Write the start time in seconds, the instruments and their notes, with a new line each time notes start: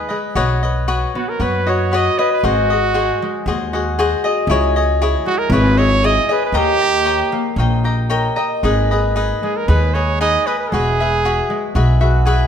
Already playing: upright bass D#2, harp G#4 G#5 D#6, trumpet B4
0.09 harp G#3, cavaquinho G#4 B4 D#5
0.35 upright bass B1, harp B3, cavaquinho F#4 B4 C#5 D#5
0.63 cavaquinho B4 C#5 D#5
0.88 cavaquinho F#4 B4 C#5 D#5
1.15 harp B3, trumpet F#4
1.29 trumpet A#4
1.40 upright bass F#2, harp B3, cavaquinho F#4 B4 C#5 D#5, trumpet B4
1.67 harp F#4, cavaquinho B4 C#5 D#5, trumpet C#5
1.92 cavaquinho F#4 B4 C#5 D#5, harp B4
1.96 trumpet D#5
2.18 trumpet B4, cavaquinho B4 C#5 D#5, harp D#5
2.33 trumpet B4
2.43 upright bass G#1, harp G#3, cavaquinho F#4 G#4 C5 D#5, trumpet F#4
2.70 cavaquinho G#4 C5 D#5
2.94 cavaquinho F#4 G#4 C5 D#5
3.22 harp G#3
3.46 upright bass D#2, harp G#3, cavaquinho F#4 G#4 C5 D#5
3.73 harp F#4, cavaquinho G#4 C5 D#5
3.99 cavaquinho F#4 G#4 C5 D#5, harp G#4
4.24 cavaquinho G#4 C5 D#5, harp D#5
4.47 upright bass C#2, harp G#3, cavaquinho E4 G#4 C#5
4.52 cavaquinho D#5
4.76 cavaquinho G#4 C#5 D#5
5.02 cavaquinho E4 G#4 C#5 D#5
5.26 harp G#3, trumpet F#4
5.38 trumpet A#4
5.50 upright bass G#1, harp G#3, cavaquinho E4 G#4 C#5, trumpet B4
5.54 cavaquinho D#5
5.77 harp E4, cavaquinho G#4 C#5 D#5, trumpet C#5
6.03 cavaquinho E4 G#4 C#5 D#5, harp G#4, trumpet D#5
6.29 cavaquinho G#4 C#5 D#5, trumpet B4, harp D#5
6.45 trumpet B4
6.52 upright bass D#2, harp A#3, cavaquinho C#5 D#5 G5 A#5
6.58 trumpet G4
6.81 cavaquinho D#5 G5 A#5
7.05 cavaquinho C#5 D#5 G5 A#5
7.32 harp A#3
7.56 upright bass A#1, harp A#3, cavaquinho C#5 D#5 G5 A#5
7.84 harp G4, cavaquinho D#5 G5 A#5
8.10 harp A#4, cavaquinho C#5 D#5 G5 A#5
8.36 harp D#5, cavaquinho D#5 G5 A#5
8.63 upright bass G#1, harp G#3, cavaquinho D#4 G#4 B4 D#5
8.91 cavaquinho G#4 B4 D#5
9.16 cavaquinho D#4 G#4 B4 D#5
9.42 harp G#3, trumpet G#4
9.57 trumpet A#4
9.68 upright bass D#2, harp G#3, cavaquinho D#4 G#4 B4 D#5, trumpet B4
9.94 harp G#4, cavaquinho G#4 B4 D#5, trumpet C#5
10.20 cavaquinho D#4 G#4 B4 D#5, trumpet D#5, harp G#5
10.47 cavaquinho G#4 B4 D#5, trumpet B4, harp D#6
10.59 trumpet B4
10.72 upright bass E1, harp G#3, cavaquinho F#4 G#4 B4 E5, trumpet G#4
11.00 cavaquinho G#4 B4 E5
11.25 cavaquinho F#4 G#4 B4 E5
11.50 harp G#3
11.75 upright bass B1, harp G#3, cavaquinho F#4 G#4 B4 E5
12.01 harp F#4, cavaquinho G#4 B4 E5
12.25 cavaquinho F#4 G#4 B4 E5, harp G#4